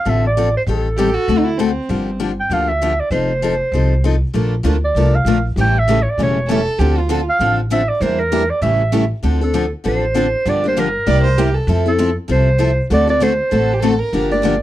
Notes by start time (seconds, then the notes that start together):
Already playing: F5
0.05 A1 D3 F3 C4 D4 A4
0.09 E5
0.27 D5
0.37 D3 F3 C4 D4 A4
0.57 C5
0.67 A1 D#3 G3 C4 G4 A4
0.71 A4
0.97 D#3 G3 C4 G4 A4
1.14 F#4
1.28 D2 D3 A3 C4 F#4 A4
1.39 D#4
1.44 E4
1.58 D3 A3 C4 F#4 A4
1.89 G1 D3 F3 A#3 D4 G4
2.20 D3 F3 A#3 D4 G4
2.40 G5
2.50 D2 D3 F3 A#3 D4 G4 F5
2.68 E5
2.82 D3 F3 A#3 D4 G4
3.00 D5
3.10 F1 F3 C4 D#4 A4 C5
3.42 F3 C4 D#4 A4
3.72 C2 F3 C4 D#4 A4
4.04 F3 C4 D#4 A4
4.33 A#1 D3 F3 A3 A#3 D4 F4 A4 A#4
4.63 D2 D3 F3 A3 A#3 D4 F4 A4 A#4
4.84 D5
4.95 C2 D3 F3 A3 A#3 D4 F4 A4 A#4
5.15 F5
5.25 A#1 D3 F3 A3 A#3 D4 F4 A4 A#4
5.56 A1 C#3 E3 G3 A3 C#4 E4 G4 A4
5.61 G5
5.79 E5
5.88 C#3 E3 G3 A3 C#4 E4 G4 A4
6.03 C#5
6.10 D5
6.18 E1 C#3 E3 G3 A3 C#4 E4 G4 A4
6.23 C#5
6.47 C#3 E3 G3 A3 C#4 E4 G4 A4
6.79 D2 D3 F3 C4 D4 G4 A4
6.98 F4
7.09 D3 F3 C4 D4 A4
7.30 F5
7.39 A1 D3 F3 C4 D4 A4
7.71 D3 F3 C4 D4 A4 E5
7.89 D5
8.00 E2 E3 G3 A#3 D4 E4 G4 A#4 C5
8.20 A#4
8.32 E3 G3 A#3 D4 E4 G4 A#4
8.50 D5
8.62 A1 C#3 E3 G3 A3 C#4 E4 G4 A4 E5
8.92 C#3 E3 G3 A3 C#4 E4 G4 A4
9.23 D2 D3 F3 C4 D4 A4
9.41 C4 D4 A4
9.54 D3 F3 C4 D4 A4
9.84 A1 D3 F3 C4 D4 A4
9.88 C5
10.14 D3 F3 C4 D4 A4
10.45 G1 D3 F3 A#3 D4 G4 D5
10.64 A#3 D4 G4
10.68 C5
10.77 D3 F3 A#3 D4 G4 A#4
11.06 C2 C3 G3 A#3 E4 G4 D5
11.23 C5
11.38 C3 G3 A#3 E4 G4
11.54 A4
11.67 F2 F3 C4 E4 A4
11.86 C4 E4 A4
11.98 F3 C4 E4 A4
12.28 C2 F3 C4 E4 A4 C5
12.59 F3 C4 E4 A4
12.90 D2 D3 A3 C4 F#4 A4 D5
13.07 C4 F#4 A4 D5
13.20 D3 A3 C4 F#4 A4 C5
13.50 A1 D3 A3 C4 F#4 A4
13.73 G4
13.80 D3 A3 C4 F#4 A4
13.84 A4
13.99 A#4
14.13 G1 D3 F3 A#3 D4 G4
14.31 A#3 D4 G4 D5
14.44 D3 F3 A#3 D4 G4